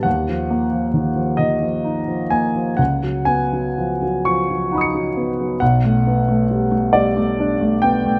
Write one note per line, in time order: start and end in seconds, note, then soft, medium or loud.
0.03 2.75 D#2 soft
0.03 1.39 F#5 medium
0.29 0.64 F3 soft
0.50 0.86 A#3 soft
0.73 1.08 F3 soft
0.94 1.17 D#3 soft
1.15 1.53 F3 soft
1.37 1.62 D#3 soft
1.37 2.31 D#5 medium
1.62 2.00 F3 soft
1.84 2.23 D#4 soft
2.08 2.46 F3 soft
2.30 2.69 A#3 soft
2.30 2.78 G#5 medium
2.56 2.79 F3 soft
2.77 5.57 C#2 soft
2.77 3.26 F#5 medium
3.03 3.42 F#3 soft
3.25 3.66 B3 soft
3.25 4.25 G#5 medium
3.53 3.92 F#3 soft
3.78 4.02 F3 soft
4.02 4.40 F#3 soft
4.25 4.49 F3 soft
4.25 5.61 C#6 medium
4.50 4.85 F#3 soft
4.72 5.07 D#4 soft
4.72 5.57 F#5 soft
4.72 5.59 B5 soft
4.78 5.60 D#6 soft
4.78 5.62 C#7 soft
4.95 5.30 F#3 soft
5.17 5.52 B3 soft
5.40 5.62 F#3 soft
5.60 8.19 B1 soft
5.60 6.95 F#5 medium
5.85 6.21 A3 soft
6.07 6.43 B3 soft
6.28 6.64 A3 soft
6.51 6.73 G3 soft
6.72 7.08 A3 soft
6.93 7.17 G3 soft
6.93 7.81 D5 medium
7.17 7.52 A3 soft
7.40 7.74 D4 soft
7.61 7.96 A3 soft
7.82 8.18 B3 soft
7.82 8.19 G5 medium
8.06 8.19 A3 soft